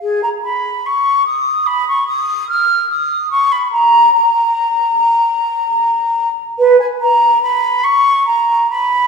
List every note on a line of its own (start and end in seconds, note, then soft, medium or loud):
0.02 0.22 G#4 medium
0.22 0.28 A#5 medium
0.44 0.87 B5 medium
0.86 1.25 C#6 medium
1.26 1.68 D#6 medium
1.66 1.87 B5 medium
1.88 2.06 C#6 medium
2.07 2.47 D#6 medium
2.49 2.89 F6 medium
2.89 3.30 D#6 medium
3.30 3.53 C#6 medium
3.51 3.71 B5 medium
3.71 4.12 A#5 medium
4.13 6.28 A#5 medium
6.58 6.79 B4 medium
6.79 6.85 G#5 medium
7.01 7.41 A#5 medium
7.42 7.85 B5 medium
7.83 8.25 C#6 medium
8.27 8.67 A#5 medium
8.70 9.07 B5 medium